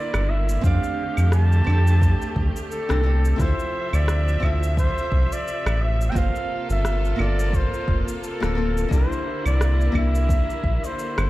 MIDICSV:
0, 0, Header, 1, 6, 480
1, 0, Start_track
1, 0, Key_signature, -1, "minor"
1, 0, Tempo, 689655
1, 443, Time_signature, 4, 2, 24, 8
1, 7864, End_track
2, 0, Start_track
2, 0, Title_t, "Flugelhorn"
2, 0, Program_c, 0, 56
2, 0, Note_on_c, 0, 74, 106
2, 207, Note_on_c, 0, 76, 106
2, 217, Note_off_c, 0, 74, 0
2, 445, Note_off_c, 0, 76, 0
2, 450, Note_on_c, 0, 77, 106
2, 899, Note_off_c, 0, 77, 0
2, 931, Note_on_c, 0, 81, 117
2, 1678, Note_off_c, 0, 81, 0
2, 1889, Note_on_c, 0, 69, 101
2, 2373, Note_on_c, 0, 72, 100
2, 2383, Note_off_c, 0, 69, 0
2, 2747, Note_on_c, 0, 74, 100
2, 2757, Note_off_c, 0, 72, 0
2, 3092, Note_on_c, 0, 76, 96
2, 3103, Note_off_c, 0, 74, 0
2, 3327, Note_off_c, 0, 76, 0
2, 3331, Note_on_c, 0, 72, 99
2, 3708, Note_on_c, 0, 74, 102
2, 3719, Note_off_c, 0, 72, 0
2, 4051, Note_on_c, 0, 76, 98
2, 4061, Note_off_c, 0, 74, 0
2, 4247, Note_on_c, 0, 79, 86
2, 4257, Note_off_c, 0, 76, 0
2, 4292, Note_on_c, 0, 77, 106
2, 4302, Note_off_c, 0, 79, 0
2, 4663, Note_off_c, 0, 77, 0
2, 4668, Note_on_c, 0, 76, 104
2, 5015, Note_on_c, 0, 74, 93
2, 5025, Note_off_c, 0, 76, 0
2, 5256, Note_on_c, 0, 72, 98
2, 5266, Note_off_c, 0, 74, 0
2, 5548, Note_off_c, 0, 72, 0
2, 5733, Note_on_c, 0, 69, 96
2, 6216, Note_on_c, 0, 72, 99
2, 6227, Note_off_c, 0, 69, 0
2, 6585, Note_off_c, 0, 72, 0
2, 6589, Note_on_c, 0, 74, 97
2, 6904, Note_off_c, 0, 74, 0
2, 6938, Note_on_c, 0, 76, 109
2, 7551, Note_on_c, 0, 72, 91
2, 7561, Note_off_c, 0, 76, 0
2, 7864, Note_off_c, 0, 72, 0
2, 7864, End_track
3, 0, Start_track
3, 0, Title_t, "Nylon-string guitar"
3, 0, Program_c, 1, 24
3, 0, Note_on_c, 1, 58, 72
3, 0, Note_on_c, 1, 62, 67
3, 0, Note_on_c, 1, 64, 67
3, 0, Note_on_c, 1, 67, 78
3, 407, Note_off_c, 1, 58, 0
3, 413, Note_off_c, 1, 62, 0
3, 420, Note_off_c, 1, 64, 0
3, 427, Note_off_c, 1, 67, 0
3, 427, Note_on_c, 1, 60, 86
3, 440, Note_on_c, 1, 62, 73
3, 453, Note_on_c, 1, 67, 77
3, 466, Note_on_c, 1, 74, 86
3, 1130, Note_off_c, 1, 60, 0
3, 1136, Note_off_c, 1, 62, 0
3, 1143, Note_off_c, 1, 67, 0
3, 1144, Note_on_c, 1, 60, 78
3, 1149, Note_off_c, 1, 74, 0
3, 1158, Note_on_c, 1, 62, 70
3, 1171, Note_on_c, 1, 67, 70
3, 1181, Note_on_c, 1, 69, 82
3, 1982, Note_off_c, 1, 60, 0
3, 1989, Note_off_c, 1, 62, 0
3, 1996, Note_off_c, 1, 67, 0
3, 2001, Note_off_c, 1, 69, 0
3, 2011, Note_on_c, 1, 60, 78
3, 2016, Note_on_c, 1, 62, 75
3, 2023, Note_on_c, 1, 67, 70
3, 2029, Note_on_c, 1, 69, 83
3, 2094, Note_off_c, 1, 60, 0
3, 2096, Note_off_c, 1, 62, 0
3, 2100, Note_off_c, 1, 67, 0
3, 2103, Note_off_c, 1, 69, 0
3, 2112, Note_on_c, 1, 60, 75
3, 2117, Note_on_c, 1, 62, 63
3, 2122, Note_on_c, 1, 67, 66
3, 2130, Note_on_c, 1, 69, 75
3, 2330, Note_off_c, 1, 60, 0
3, 2335, Note_off_c, 1, 62, 0
3, 2337, Note_off_c, 1, 67, 0
3, 2339, Note_on_c, 1, 60, 75
3, 2341, Note_off_c, 1, 69, 0
3, 2352, Note_on_c, 1, 64, 71
3, 2364, Note_on_c, 1, 65, 69
3, 2377, Note_on_c, 1, 69, 89
3, 3046, Note_off_c, 1, 60, 0
3, 3052, Note_off_c, 1, 64, 0
3, 3058, Note_off_c, 1, 65, 0
3, 3061, Note_on_c, 1, 60, 69
3, 3065, Note_off_c, 1, 69, 0
3, 3076, Note_on_c, 1, 64, 64
3, 3087, Note_on_c, 1, 65, 66
3, 3102, Note_on_c, 1, 69, 79
3, 4247, Note_off_c, 1, 60, 0
3, 4254, Note_off_c, 1, 64, 0
3, 4258, Note_on_c, 1, 58, 82
3, 4260, Note_off_c, 1, 65, 0
3, 4268, Note_off_c, 1, 69, 0
3, 4272, Note_on_c, 1, 60, 76
3, 4285, Note_on_c, 1, 65, 81
3, 4299, Note_on_c, 1, 72, 88
3, 4965, Note_off_c, 1, 58, 0
3, 4972, Note_off_c, 1, 60, 0
3, 4979, Note_off_c, 1, 65, 0
3, 4982, Note_on_c, 1, 58, 73
3, 4986, Note_off_c, 1, 72, 0
3, 4994, Note_on_c, 1, 60, 70
3, 5007, Note_on_c, 1, 65, 68
3, 5019, Note_on_c, 1, 69, 78
3, 5821, Note_off_c, 1, 58, 0
3, 5827, Note_off_c, 1, 60, 0
3, 5834, Note_off_c, 1, 65, 0
3, 5840, Note_off_c, 1, 69, 0
3, 5849, Note_on_c, 1, 58, 84
3, 5855, Note_on_c, 1, 60, 76
3, 5862, Note_on_c, 1, 65, 76
3, 5870, Note_on_c, 1, 69, 87
3, 5933, Note_off_c, 1, 58, 0
3, 5936, Note_off_c, 1, 60, 0
3, 5939, Note_off_c, 1, 65, 0
3, 5943, Note_off_c, 1, 69, 0
3, 5951, Note_on_c, 1, 58, 73
3, 5959, Note_on_c, 1, 60, 68
3, 5966, Note_on_c, 1, 65, 69
3, 5971, Note_on_c, 1, 69, 82
3, 6172, Note_off_c, 1, 58, 0
3, 6176, Note_off_c, 1, 60, 0
3, 6180, Note_off_c, 1, 65, 0
3, 6182, Note_off_c, 1, 69, 0
3, 6184, Note_on_c, 1, 58, 84
3, 6198, Note_on_c, 1, 62, 76
3, 6209, Note_on_c, 1, 64, 75
3, 6221, Note_on_c, 1, 67, 93
3, 6888, Note_off_c, 1, 58, 0
3, 6895, Note_off_c, 1, 62, 0
3, 6901, Note_off_c, 1, 64, 0
3, 6904, Note_on_c, 1, 58, 75
3, 6907, Note_off_c, 1, 67, 0
3, 6916, Note_on_c, 1, 62, 67
3, 6931, Note_on_c, 1, 64, 70
3, 6944, Note_on_c, 1, 67, 81
3, 7864, Note_off_c, 1, 58, 0
3, 7864, Note_off_c, 1, 62, 0
3, 7864, Note_off_c, 1, 64, 0
3, 7864, Note_off_c, 1, 67, 0
3, 7864, End_track
4, 0, Start_track
4, 0, Title_t, "String section"
4, 0, Program_c, 2, 48
4, 0, Note_on_c, 2, 50, 78
4, 0, Note_on_c, 2, 58, 77
4, 0, Note_on_c, 2, 64, 92
4, 421, Note_off_c, 2, 64, 0
4, 422, Note_off_c, 2, 58, 0
4, 442, Note_on_c, 2, 57, 74
4, 442, Note_on_c, 2, 67, 89
4, 2334, Note_off_c, 2, 50, 0
4, 2343, Note_off_c, 2, 57, 0
4, 2343, Note_off_c, 2, 67, 0
4, 2365, Note_on_c, 2, 53, 70
4, 2366, Note_on_c, 2, 48, 74
4, 2367, Note_on_c, 2, 76, 89
4, 4265, Note_off_c, 2, 53, 0
4, 4266, Note_off_c, 2, 76, 0
4, 4282, Note_on_c, 2, 65, 93
4, 4283, Note_on_c, 2, 58, 75
4, 4286, Note_on_c, 2, 69, 68
4, 6176, Note_off_c, 2, 48, 0
4, 6183, Note_off_c, 2, 65, 0
4, 6184, Note_off_c, 2, 58, 0
4, 6185, Note_off_c, 2, 69, 0
4, 6201, Note_on_c, 2, 50, 81
4, 6202, Note_on_c, 2, 58, 76
4, 6202, Note_on_c, 2, 64, 88
4, 7864, Note_off_c, 2, 50, 0
4, 7864, Note_off_c, 2, 58, 0
4, 7864, Note_off_c, 2, 64, 0
4, 7864, End_track
5, 0, Start_track
5, 0, Title_t, "Analog synth bass"
5, 0, Program_c, 3, 38
5, 98, Note_on_c, 3, 31, 96
5, 407, Note_off_c, 3, 31, 0
5, 442, Note_on_c, 3, 41, 95
5, 549, Note_off_c, 3, 41, 0
5, 819, Note_on_c, 3, 41, 97
5, 1127, Note_off_c, 3, 41, 0
5, 1164, Note_on_c, 3, 41, 102
5, 1493, Note_off_c, 3, 41, 0
5, 1642, Note_on_c, 3, 38, 82
5, 1749, Note_off_c, 3, 38, 0
5, 2020, Note_on_c, 3, 36, 100
5, 2328, Note_off_c, 3, 36, 0
5, 2363, Note_on_c, 3, 38, 105
5, 2469, Note_off_c, 3, 38, 0
5, 2736, Note_on_c, 3, 38, 90
5, 3045, Note_off_c, 3, 38, 0
5, 3083, Note_on_c, 3, 38, 107
5, 3412, Note_off_c, 3, 38, 0
5, 3562, Note_on_c, 3, 36, 84
5, 3669, Note_off_c, 3, 36, 0
5, 3939, Note_on_c, 3, 33, 96
5, 4247, Note_off_c, 3, 33, 0
5, 4283, Note_on_c, 3, 31, 94
5, 4390, Note_off_c, 3, 31, 0
5, 4662, Note_on_c, 3, 31, 92
5, 4969, Note_off_c, 3, 31, 0
5, 5007, Note_on_c, 3, 31, 108
5, 5334, Note_off_c, 3, 31, 0
5, 5485, Note_on_c, 3, 29, 85
5, 5591, Note_off_c, 3, 29, 0
5, 5866, Note_on_c, 3, 26, 100
5, 6170, Note_off_c, 3, 26, 0
5, 6204, Note_on_c, 3, 36, 99
5, 6310, Note_off_c, 3, 36, 0
5, 6582, Note_on_c, 3, 36, 88
5, 6889, Note_off_c, 3, 36, 0
5, 6921, Note_on_c, 3, 36, 111
5, 7251, Note_off_c, 3, 36, 0
5, 7404, Note_on_c, 3, 34, 83
5, 7510, Note_off_c, 3, 34, 0
5, 7780, Note_on_c, 3, 31, 95
5, 7864, Note_off_c, 3, 31, 0
5, 7864, End_track
6, 0, Start_track
6, 0, Title_t, "Drums"
6, 96, Note_on_c, 9, 37, 72
6, 96, Note_on_c, 9, 75, 71
6, 101, Note_on_c, 9, 82, 33
6, 166, Note_off_c, 9, 37, 0
6, 166, Note_off_c, 9, 75, 0
6, 171, Note_off_c, 9, 82, 0
6, 341, Note_on_c, 9, 82, 70
6, 411, Note_off_c, 9, 82, 0
6, 442, Note_on_c, 9, 36, 127
6, 446, Note_on_c, 9, 82, 53
6, 512, Note_off_c, 9, 36, 0
6, 516, Note_off_c, 9, 82, 0
6, 582, Note_on_c, 9, 82, 36
6, 651, Note_off_c, 9, 82, 0
6, 815, Note_on_c, 9, 75, 54
6, 820, Note_on_c, 9, 82, 65
6, 884, Note_off_c, 9, 75, 0
6, 889, Note_off_c, 9, 82, 0
6, 918, Note_on_c, 9, 37, 77
6, 923, Note_on_c, 9, 82, 63
6, 988, Note_off_c, 9, 37, 0
6, 993, Note_off_c, 9, 82, 0
6, 1061, Note_on_c, 9, 82, 31
6, 1130, Note_off_c, 9, 82, 0
6, 1161, Note_on_c, 9, 75, 51
6, 1231, Note_off_c, 9, 75, 0
6, 1303, Note_on_c, 9, 82, 64
6, 1373, Note_off_c, 9, 82, 0
6, 1403, Note_on_c, 9, 36, 121
6, 1411, Note_on_c, 9, 82, 54
6, 1472, Note_off_c, 9, 36, 0
6, 1481, Note_off_c, 9, 82, 0
6, 1544, Note_on_c, 9, 82, 36
6, 1614, Note_off_c, 9, 82, 0
6, 1642, Note_on_c, 9, 36, 112
6, 1712, Note_off_c, 9, 36, 0
6, 1784, Note_on_c, 9, 82, 66
6, 1853, Note_off_c, 9, 82, 0
6, 1890, Note_on_c, 9, 82, 55
6, 1960, Note_off_c, 9, 82, 0
6, 2018, Note_on_c, 9, 37, 67
6, 2023, Note_on_c, 9, 82, 34
6, 2087, Note_off_c, 9, 37, 0
6, 2092, Note_off_c, 9, 82, 0
6, 2262, Note_on_c, 9, 82, 65
6, 2331, Note_off_c, 9, 82, 0
6, 2362, Note_on_c, 9, 36, 124
6, 2364, Note_on_c, 9, 82, 54
6, 2432, Note_off_c, 9, 36, 0
6, 2434, Note_off_c, 9, 82, 0
6, 2501, Note_on_c, 9, 82, 33
6, 2571, Note_off_c, 9, 82, 0
6, 2737, Note_on_c, 9, 75, 53
6, 2742, Note_on_c, 9, 82, 60
6, 2806, Note_off_c, 9, 75, 0
6, 2811, Note_off_c, 9, 82, 0
6, 2840, Note_on_c, 9, 37, 79
6, 2845, Note_on_c, 9, 82, 61
6, 2909, Note_off_c, 9, 37, 0
6, 2914, Note_off_c, 9, 82, 0
6, 2982, Note_on_c, 9, 82, 33
6, 3051, Note_off_c, 9, 82, 0
6, 3081, Note_on_c, 9, 36, 60
6, 3082, Note_on_c, 9, 75, 54
6, 3151, Note_off_c, 9, 36, 0
6, 3151, Note_off_c, 9, 75, 0
6, 3224, Note_on_c, 9, 82, 64
6, 3293, Note_off_c, 9, 82, 0
6, 3322, Note_on_c, 9, 36, 127
6, 3330, Note_on_c, 9, 82, 54
6, 3391, Note_off_c, 9, 36, 0
6, 3400, Note_off_c, 9, 82, 0
6, 3466, Note_on_c, 9, 82, 33
6, 3536, Note_off_c, 9, 82, 0
6, 3562, Note_on_c, 9, 36, 104
6, 3631, Note_off_c, 9, 36, 0
6, 3706, Note_on_c, 9, 82, 65
6, 3775, Note_off_c, 9, 82, 0
6, 3812, Note_on_c, 9, 82, 52
6, 3882, Note_off_c, 9, 82, 0
6, 3942, Note_on_c, 9, 37, 68
6, 3942, Note_on_c, 9, 75, 75
6, 3947, Note_on_c, 9, 82, 31
6, 4012, Note_off_c, 9, 37, 0
6, 4012, Note_off_c, 9, 75, 0
6, 4017, Note_off_c, 9, 82, 0
6, 4184, Note_on_c, 9, 82, 63
6, 4254, Note_off_c, 9, 82, 0
6, 4282, Note_on_c, 9, 36, 126
6, 4288, Note_on_c, 9, 82, 52
6, 4352, Note_off_c, 9, 36, 0
6, 4358, Note_off_c, 9, 82, 0
6, 4423, Note_on_c, 9, 82, 32
6, 4493, Note_off_c, 9, 82, 0
6, 4663, Note_on_c, 9, 82, 63
6, 4733, Note_off_c, 9, 82, 0
6, 4766, Note_on_c, 9, 37, 80
6, 4771, Note_on_c, 9, 82, 56
6, 4835, Note_off_c, 9, 37, 0
6, 4840, Note_off_c, 9, 82, 0
6, 4906, Note_on_c, 9, 82, 30
6, 4975, Note_off_c, 9, 82, 0
6, 5004, Note_on_c, 9, 75, 56
6, 5074, Note_off_c, 9, 75, 0
6, 5146, Note_on_c, 9, 82, 62
6, 5216, Note_off_c, 9, 82, 0
6, 5243, Note_on_c, 9, 36, 117
6, 5249, Note_on_c, 9, 82, 52
6, 5313, Note_off_c, 9, 36, 0
6, 5319, Note_off_c, 9, 82, 0
6, 5385, Note_on_c, 9, 82, 31
6, 5455, Note_off_c, 9, 82, 0
6, 5483, Note_on_c, 9, 36, 102
6, 5553, Note_off_c, 9, 36, 0
6, 5626, Note_on_c, 9, 82, 61
6, 5695, Note_off_c, 9, 82, 0
6, 5733, Note_on_c, 9, 82, 51
6, 5802, Note_off_c, 9, 82, 0
6, 5865, Note_on_c, 9, 37, 69
6, 5870, Note_on_c, 9, 82, 30
6, 5934, Note_off_c, 9, 37, 0
6, 5939, Note_off_c, 9, 82, 0
6, 6107, Note_on_c, 9, 82, 63
6, 6177, Note_off_c, 9, 82, 0
6, 6202, Note_on_c, 9, 36, 125
6, 6213, Note_on_c, 9, 82, 53
6, 6272, Note_off_c, 9, 36, 0
6, 6283, Note_off_c, 9, 82, 0
6, 6350, Note_on_c, 9, 82, 33
6, 6420, Note_off_c, 9, 82, 0
6, 6581, Note_on_c, 9, 75, 58
6, 6586, Note_on_c, 9, 82, 63
6, 6651, Note_off_c, 9, 75, 0
6, 6656, Note_off_c, 9, 82, 0
6, 6688, Note_on_c, 9, 37, 83
6, 6693, Note_on_c, 9, 82, 56
6, 6757, Note_off_c, 9, 37, 0
6, 6762, Note_off_c, 9, 82, 0
6, 6828, Note_on_c, 9, 82, 30
6, 6898, Note_off_c, 9, 82, 0
6, 6922, Note_on_c, 9, 36, 59
6, 6925, Note_on_c, 9, 75, 60
6, 6991, Note_off_c, 9, 36, 0
6, 6995, Note_off_c, 9, 75, 0
6, 7065, Note_on_c, 9, 82, 62
6, 7135, Note_off_c, 9, 82, 0
6, 7162, Note_on_c, 9, 36, 124
6, 7171, Note_on_c, 9, 82, 51
6, 7232, Note_off_c, 9, 36, 0
6, 7241, Note_off_c, 9, 82, 0
6, 7308, Note_on_c, 9, 82, 33
6, 7377, Note_off_c, 9, 82, 0
6, 7403, Note_on_c, 9, 36, 98
6, 7472, Note_off_c, 9, 36, 0
6, 7545, Note_on_c, 9, 82, 64
6, 7615, Note_off_c, 9, 82, 0
6, 7649, Note_on_c, 9, 82, 57
6, 7719, Note_off_c, 9, 82, 0
6, 7780, Note_on_c, 9, 37, 76
6, 7780, Note_on_c, 9, 75, 80
6, 7785, Note_on_c, 9, 82, 30
6, 7849, Note_off_c, 9, 37, 0
6, 7849, Note_off_c, 9, 75, 0
6, 7855, Note_off_c, 9, 82, 0
6, 7864, End_track
0, 0, End_of_file